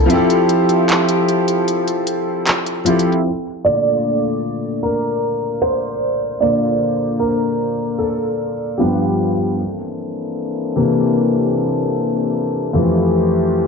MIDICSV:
0, 0, Header, 1, 4, 480
1, 0, Start_track
1, 0, Tempo, 789474
1, 60, Time_signature, 4, 2, 24, 8
1, 8313, End_track
2, 0, Start_track
2, 0, Title_t, "French horn section"
2, 0, Program_c, 0, 60
2, 0, Note_on_c, 0, 64, 93
2, 0, Note_on_c, 0, 69, 79
2, 63, Note_on_c, 0, 53, 89
2, 63, Note_on_c, 0, 67, 99
2, 1957, Note_off_c, 0, 64, 0
2, 1958, Note_off_c, 0, 69, 0
2, 1962, Note_off_c, 0, 53, 0
2, 1962, Note_off_c, 0, 67, 0
2, 5820, Note_on_c, 0, 58, 68
2, 5820, Note_on_c, 0, 60, 71
2, 5820, Note_on_c, 0, 62, 69
2, 5821, Note_on_c, 0, 52, 71
2, 5821, Note_on_c, 0, 69, 81
2, 7721, Note_off_c, 0, 52, 0
2, 7721, Note_off_c, 0, 58, 0
2, 7721, Note_off_c, 0, 60, 0
2, 7721, Note_off_c, 0, 62, 0
2, 7721, Note_off_c, 0, 69, 0
2, 7742, Note_on_c, 0, 52, 77
2, 7742, Note_on_c, 0, 64, 70
2, 7743, Note_on_c, 0, 57, 66
2, 7743, Note_on_c, 0, 67, 84
2, 8313, Note_off_c, 0, 52, 0
2, 8313, Note_off_c, 0, 57, 0
2, 8313, Note_off_c, 0, 64, 0
2, 8313, Note_off_c, 0, 67, 0
2, 8313, End_track
3, 0, Start_track
3, 0, Title_t, "Grand piano"
3, 0, Program_c, 1, 0
3, 0, Control_c, 1, 64, 127
3, 35, Note_on_c, 1, 53, 77
3, 50, Note_on_c, 1, 60, 67
3, 64, Note_on_c, 1, 64, 73
3, 67, Control_c, 1, 64, 0
3, 79, Note_on_c, 1, 67, 74
3, 94, Note_on_c, 1, 69, 85
3, 178, Control_c, 1, 64, 127
3, 1703, Note_off_c, 1, 53, 0
3, 1710, Note_off_c, 1, 60, 0
3, 1718, Note_off_c, 1, 64, 0
3, 1725, Note_off_c, 1, 67, 0
3, 1731, Note_on_c, 1, 53, 57
3, 1733, Note_off_c, 1, 69, 0
3, 1738, Note_on_c, 1, 60, 51
3, 1746, Note_on_c, 1, 64, 55
3, 1752, Note_on_c, 1, 67, 51
3, 1761, Note_on_c, 1, 69, 62
3, 1975, Note_off_c, 1, 53, 0
3, 1979, Note_off_c, 1, 60, 0
3, 1983, Note_off_c, 1, 64, 0
3, 1986, Note_off_c, 1, 67, 0
3, 1988, Control_c, 1, 64, 0
3, 1990, Note_off_c, 1, 69, 0
3, 2082, Control_c, 1, 64, 127
3, 2217, Note_on_c, 1, 74, 116
3, 2221, Note_on_c, 1, 46, 55
3, 2225, Note_on_c, 1, 50, 45
3, 2229, Note_on_c, 1, 57, 56
3, 2540, Note_off_c, 1, 46, 0
3, 2542, Note_off_c, 1, 50, 0
3, 2544, Note_off_c, 1, 57, 0
3, 2914, Note_off_c, 1, 74, 0
3, 2936, Note_on_c, 1, 70, 88
3, 3415, Note_on_c, 1, 72, 86
3, 3432, Note_off_c, 1, 70, 0
3, 3894, Note_on_c, 1, 74, 90
3, 3901, Note_on_c, 1, 46, 52
3, 3905, Note_on_c, 1, 50, 49
3, 3908, Note_on_c, 1, 58, 58
3, 3912, Note_off_c, 1, 72, 0
3, 4374, Note_on_c, 1, 70, 81
3, 4392, Note_off_c, 1, 74, 0
3, 4854, Note_on_c, 1, 69, 84
3, 4871, Note_off_c, 1, 70, 0
3, 5316, Note_off_c, 1, 46, 0
3, 5318, Note_off_c, 1, 50, 0
3, 5320, Note_off_c, 1, 58, 0
3, 5336, Note_on_c, 1, 67, 68
3, 5342, Note_on_c, 1, 43, 51
3, 5345, Note_on_c, 1, 53, 47
3, 5348, Control_c, 1, 64, 0
3, 5349, Note_on_c, 1, 59, 57
3, 5352, Note_off_c, 1, 69, 0
3, 5437, Control_c, 1, 64, 127
3, 5660, Note_off_c, 1, 43, 0
3, 5662, Note_off_c, 1, 53, 0
3, 5664, Note_off_c, 1, 59, 0
3, 5673, Note_off_c, 1, 67, 0
3, 5828, Control_c, 1, 64, 0
3, 5932, Control_c, 1, 64, 127
3, 6541, Note_on_c, 1, 48, 52
3, 6546, Note_on_c, 1, 52, 50
3, 6548, Note_on_c, 1, 58, 58
3, 7716, Note_off_c, 1, 48, 0
3, 7718, Note_off_c, 1, 52, 0
3, 7720, Note_off_c, 1, 58, 0
3, 7741, Note_on_c, 1, 41, 53
3, 7745, Note_on_c, 1, 52, 47
3, 7747, Control_c, 1, 64, 0
3, 7750, Note_on_c, 1, 57, 55
3, 7852, Control_c, 1, 64, 127
3, 8313, Note_off_c, 1, 41, 0
3, 8313, Note_off_c, 1, 52, 0
3, 8313, Note_off_c, 1, 57, 0
3, 8313, End_track
4, 0, Start_track
4, 0, Title_t, "Drums"
4, 60, Note_on_c, 9, 42, 80
4, 121, Note_off_c, 9, 42, 0
4, 182, Note_on_c, 9, 42, 60
4, 243, Note_off_c, 9, 42, 0
4, 299, Note_on_c, 9, 42, 70
4, 360, Note_off_c, 9, 42, 0
4, 420, Note_on_c, 9, 42, 52
4, 481, Note_off_c, 9, 42, 0
4, 540, Note_on_c, 9, 42, 68
4, 547, Note_on_c, 9, 39, 102
4, 601, Note_off_c, 9, 42, 0
4, 607, Note_off_c, 9, 39, 0
4, 660, Note_on_c, 9, 42, 76
4, 721, Note_off_c, 9, 42, 0
4, 781, Note_on_c, 9, 42, 57
4, 842, Note_off_c, 9, 42, 0
4, 899, Note_on_c, 9, 42, 60
4, 960, Note_off_c, 9, 42, 0
4, 1021, Note_on_c, 9, 42, 60
4, 1082, Note_off_c, 9, 42, 0
4, 1140, Note_on_c, 9, 42, 52
4, 1201, Note_off_c, 9, 42, 0
4, 1258, Note_on_c, 9, 42, 70
4, 1319, Note_off_c, 9, 42, 0
4, 1500, Note_on_c, 9, 42, 71
4, 1504, Note_on_c, 9, 39, 116
4, 1560, Note_off_c, 9, 42, 0
4, 1564, Note_off_c, 9, 39, 0
4, 1620, Note_on_c, 9, 42, 53
4, 1681, Note_off_c, 9, 42, 0
4, 1738, Note_on_c, 9, 46, 82
4, 1740, Note_on_c, 9, 42, 77
4, 1798, Note_off_c, 9, 46, 0
4, 1800, Note_off_c, 9, 42, 0
4, 1820, Note_on_c, 9, 42, 60
4, 1880, Note_off_c, 9, 42, 0
4, 1899, Note_on_c, 9, 42, 44
4, 1960, Note_off_c, 9, 42, 0
4, 8313, End_track
0, 0, End_of_file